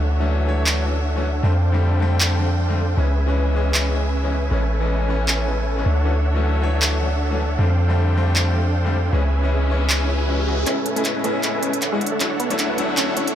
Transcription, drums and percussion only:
0.66 clap
2.20 clap
3.74 clap
5.28 clap
6.82 clap
8.36 clap
9.90 clap
10.66 clap, closed hi-hat
10.86 closed hi-hat
10.96 closed hi-hat
11.05 clap, closed hi-hat
11.24 closed hi-hat
11.43 clap, closed hi-hat
11.63 closed hi-hat
11.73 closed hi-hat
11.82 clap, closed hi-hat
12.01 closed hi-hat
12.06 closed hi-hat
12.20 clap, closed hi-hat
12.40 closed hi-hat
12.50 closed hi-hat
12.59 clap, closed hi-hat
12.78 closed hi-hat
12.97 clap, closed hi-hat
13.17 closed hi-hat
13.27 closed hi-hat

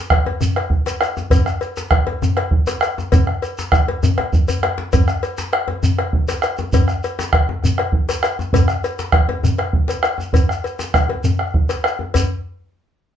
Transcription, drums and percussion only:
0.10 bombo rim, bombo low, cowbell
0.25 bombo rim, cowbell, djembe slap, djembe tone
0.40 bombo rim, djembe slap, djembe bass, shekere
0.56 bombo rim, cowbell
0.70 bombo low
0.86 cowbell, djembe slap, shekere
1.01 bombo rim, cowbell, djembe slap, shekere
1.17 bombo rim, djembe slap, djembe tone, shekere
1.30 bombo low, cowbell, djembe bass, shekere
1.46 bombo rim, shekere
1.61 cowbell, djembe slap, shekere
1.77 djembe slap, shekere
1.91 bombo rim, bombo low, cowbell
2.06 bombo rim, cowbell, djembe slap, djembe tone
2.22 bombo rim, djembe slap, djembe bass, shekere
2.37 bombo rim, cowbell
2.51 bombo low
2.67 cowbell, djembe slap, shekere
2.81 bombo rim, cowbell, djembe slap, shekere
2.97 bombo rim, djembe slap, djembe tone, shekere
3.12 bombo rim, bombo low, cowbell, djembe slap, djembe bass, shekere
3.27 bombo rim, djembe slap
3.42 cowbell, djembe slap, shekere
3.58 djembe slap, shekere
3.72 bombo rim, bombo low, cowbell, shekere
3.88 cowbell, djembe slap, djembe tone
4.03 bombo rim, djembe bass, shekere
4.18 bombo rim, cowbell, djembe bass
4.33 bombo low, djembe bass, shekere
4.48 cowbell, djembe bass, shekere
4.63 bombo rim, cowbell, djembe slap
4.78 djembe slap
4.93 bombo low, cowbell, djembe bass, shekere
5.08 bombo rim, shekere
5.23 cowbell, djembe slap, shekere
5.38 djembe slap, shekere
5.53 bombo rim, cowbell
5.68 bombo rim, cowbell, djembe slap, djembe tone
5.83 bombo rim, djembe slap, djembe bass, shekere
5.98 bombo rim, cowbell
6.13 bombo low
6.28 cowbell, djembe slap, shekere
6.42 bombo rim, cowbell, shekere
6.58 bombo rim, djembe slap, djembe tone, shekere
6.73 bombo low, cowbell, djembe bass, shekere
6.88 bombo rim, shekere
7.04 cowbell, djembe slap, shekere
7.19 djembe slap, shekere
7.33 bombo rim, bombo low, cowbell
7.48 bombo rim, djembe slap, djembe tone
7.63 bombo rim, djembe slap, djembe bass, shekere
7.78 bombo rim, cowbell
7.92 bombo low
8.09 cowbell, djembe slap, shekere
8.23 bombo rim, cowbell, djembe slap, shekere
8.37 bombo rim, djembe slap, djembe tone, shekere
8.53 bombo low, cowbell, djembe bass, shekere
8.68 bombo rim, shekere
8.84 cowbell, djembe slap, shekere
8.99 djembe slap, shekere
9.12 bombo rim, bombo low, cowbell
9.29 bombo rim, cowbell, djembe slap, djembe tone
9.44 bombo rim, djembe slap, djembe bass, shekere
9.58 bombo rim, cowbell
9.73 bombo low
9.88 cowbell, djembe slap, shekere
10.03 bombo rim, cowbell, djembe slap, shekere
10.18 bombo rim, djembe slap, djembe tone, shekere
10.33 bombo low, cowbell, djembe slap, djembe bass, shekere
10.49 bombo rim, djembe slap, shekere
10.64 cowbell, shekere
10.79 djembe slap, shekere
10.94 bombo rim, bombo low, cowbell, shekere
11.09 cowbell, djembe tone
11.24 bombo rim, djembe bass, shekere
11.39 bombo rim
11.54 bombo rim, bombo low
11.69 cowbell, djembe slap, shekere
11.84 bombo rim, cowbell, shekere
11.99 djembe tone
12.14 bombo low, cowbell, djembe bass, shekere

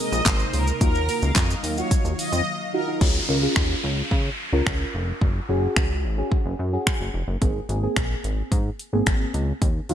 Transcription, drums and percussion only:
0.12 shaker
0.25 kick, snare, clap, closed hi-hat, shaker
0.40 shaker
0.53 open hi-hat, shaker
0.67 shaker
0.81 kick, closed hi-hat, shaker
0.95 shaker
1.09 open hi-hat, shaker
1.22 shaker
1.35 kick, snare, clap, closed hi-hat, shaker
1.50 shaker
1.64 open hi-hat, shaker
1.77 shaker
1.91 kick, closed hi-hat, shaker
2.05 shaker
2.19 open hi-hat, shaker
2.32 shaker
3.01 kick, crash
3.56 finger snap, kick
4.11 kick
4.67 finger snap, kick
5.21 kick
5.76 finger snap, kick
6.32 kick
6.87 finger snap, kick
7.42 kick, closed hi-hat
7.69 closed hi-hat
7.96 finger snap, kick, closed hi-hat
8.24 closed hi-hat
8.52 kick, closed hi-hat
8.79 closed hi-hat
9.06 finger snap, kick, closed hi-hat
9.34 closed hi-hat
9.62 kick, closed hi-hat
9.89 closed hi-hat

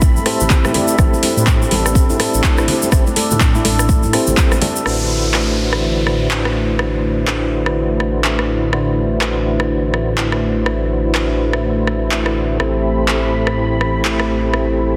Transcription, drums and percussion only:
0.01 kick, shaker
0.16 shaker
0.26 cross-stick, open hi-hat, muted conga
0.40 low conga, shaker
0.50 kick, clap, muted conga, low conga, shaker
0.65 cross-stick, high conga, shaker
0.74 open hi-hat, muted conga, high conga, low conga
0.88 shaker
0.98 kick, cross-stick, shaker
1.14 muted conga, shaker
1.23 open hi-hat, high conga
1.37 muted conga, shaker
1.47 kick, cross-stick, clap, shaker
1.62 muted conga, shaker
1.71 open hi-hat, high conga
1.86 cross-stick, muted conga, shaker
1.95 kick, shaker
2.10 shaker
2.19 cross-stick, open hi-hat, muted conga
2.34 shaker
2.44 kick, clap, muted conga, shaker
2.58 cross-stick, shaker
2.68 open hi-hat, muted conga, low conga
2.82 high conga, shaker
2.92 kick, cross-stick, shaker
3.07 muted conga, shaker
3.16 open hi-hat, high conga
3.31 muted conga, low conga, shaker
3.40 kick, cross-stick, clap, shaker
3.55 muted conga, shaker
3.65 open hi-hat, high conga
3.79 cross-stick, muted conga, shaker
3.89 kick, shaker
4.03 shaker
4.13 cross-stick, open hi-hat, muted conga
4.27 high conga, low conga, shaker
4.37 kick, clap, muted conga, low conga, shaker
4.51 cross-stick, high conga, shaker
4.62 open hi-hat, muted conga, high conga, low conga
4.76 shaker
4.86 cross-stick
5.34 cross-stick, clap
5.73 cross-stick
6.07 cross-stick
6.31 clap
6.45 cross-stick
6.79 cross-stick
7.28 cross-stick, clap
7.66 cross-stick
8.00 cross-stick
8.24 clap
8.39 cross-stick
8.73 cross-stick
9.21 cross-stick, clap
9.60 cross-stick
9.94 cross-stick
10.18 clap
10.32 cross-stick
10.66 cross-stick
11.15 cross-stick, clap
11.53 cross-stick
11.87 cross-stick
12.12 clap
12.26 cross-stick
12.60 cross-stick
13.08 cross-stick, clap
13.47 cross-stick
13.81 cross-stick
14.05 clap
14.20 cross-stick
14.54 cross-stick

